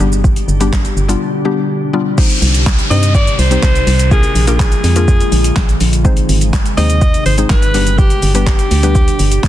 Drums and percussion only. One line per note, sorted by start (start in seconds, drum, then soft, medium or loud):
0.00 shaker medium
0.12 shaker medium
0.24 kick loud
0.24 shaker medium
0.36 closed hi-hat soft
0.36 shaker medium
0.49 shaker medium
0.61 closed hi-hat medium
0.61 shaker medium
0.73 kick loud
0.73 snare medium
0.73 clap loud
0.73 shaker medium
0.85 closed hi-hat medium
0.85 shaker medium
0.97 shaker medium
1.09 closed hi-hat medium
1.09 shaker medium
2.18 kick loud
2.18 crash loud
2.18 shaker medium
2.30 closed hi-hat medium
2.30 shaker medium
2.42 open hi-hat medium
2.42 shaker medium
2.54 closed hi-hat medium
2.54 shaker medium
2.66 kick loud
2.66 snare medium
2.66 clap loud
2.66 shaker medium
2.79 closed hi-hat medium
2.79 shaker medium
2.91 open hi-hat medium
2.91 shaker medium
3.03 closed hi-hat medium
3.03 shaker medium
3.15 kick loud
3.15 shaker medium
3.27 closed hi-hat medium
3.27 shaker medium
3.39 open hi-hat medium
3.39 shaker medium
3.51 closed hi-hat medium
3.51 shaker medium
3.62 kick loud
3.62 snare medium
3.62 clap loud
3.62 shaker medium
3.75 closed hi-hat medium
3.75 shaker medium
3.87 open hi-hat medium
3.87 shaker medium
3.99 closed hi-hat medium
3.99 shaker medium
4.11 kick loud
4.11 shaker medium
4.23 closed hi-hat medium
4.23 shaker medium
4.35 open hi-hat medium
4.35 shaker medium
4.47 closed hi-hat medium
4.47 shaker medium
4.59 kick loud
4.59 snare medium
4.59 clap loud
4.59 shaker medium
4.72 closed hi-hat medium
4.72 shaker medium
4.84 open hi-hat medium
4.84 shaker medium
4.96 closed hi-hat medium
4.96 shaker medium
5.08 kick loud
5.08 shaker medium
5.21 closed hi-hat medium
5.21 shaker medium
5.32 open hi-hat medium
5.32 shaker medium
5.44 closed hi-hat medium
5.44 shaker medium
5.56 kick loud
5.56 snare medium
5.56 clap loud
5.56 shaker medium
5.69 closed hi-hat medium
5.69 shaker medium
5.81 open hi-hat medium
5.81 shaker medium
5.93 closed hi-hat medium
5.93 shaker medium
6.05 kick loud
6.05 shaker medium
6.17 closed hi-hat medium
6.17 shaker medium
6.29 open hi-hat medium
6.29 shaker medium
6.41 closed hi-hat medium
6.41 shaker medium
6.53 kick loud
6.53 snare medium
6.53 clap loud
6.53 shaker medium
6.66 closed hi-hat medium
6.66 shaker medium
6.78 open hi-hat medium
6.78 shaker medium
6.90 closed hi-hat medium
6.90 shaker medium
7.02 kick loud
7.02 shaker medium
7.14 closed hi-hat medium
7.14 shaker medium
7.26 open hi-hat medium
7.26 shaker medium
7.38 closed hi-hat medium
7.38 shaker medium
7.49 kick loud
7.49 snare medium
7.49 clap loud
7.49 shaker medium
7.62 closed hi-hat medium
7.62 shaker medium
7.74 open hi-hat medium
7.74 shaker medium
7.87 closed hi-hat medium
7.87 shaker medium
7.98 kick loud
7.98 shaker medium
8.10 closed hi-hat medium
8.10 shaker medium
8.22 open hi-hat medium
8.22 shaker medium
8.35 closed hi-hat medium
8.35 shaker medium
8.46 kick loud
8.46 snare medium
8.46 clap loud
8.46 shaker medium
8.59 closed hi-hat medium
8.59 shaker medium
8.71 open hi-hat medium
8.71 shaker medium
8.83 closed hi-hat medium
8.83 shaker medium
8.95 kick loud
8.95 shaker medium
9.08 closed hi-hat medium
9.08 shaker medium
9.19 open hi-hat medium
9.19 shaker medium
9.32 closed hi-hat medium
9.32 shaker medium
9.43 kick loud
9.43 snare medium
9.43 clap loud
9.43 shaker medium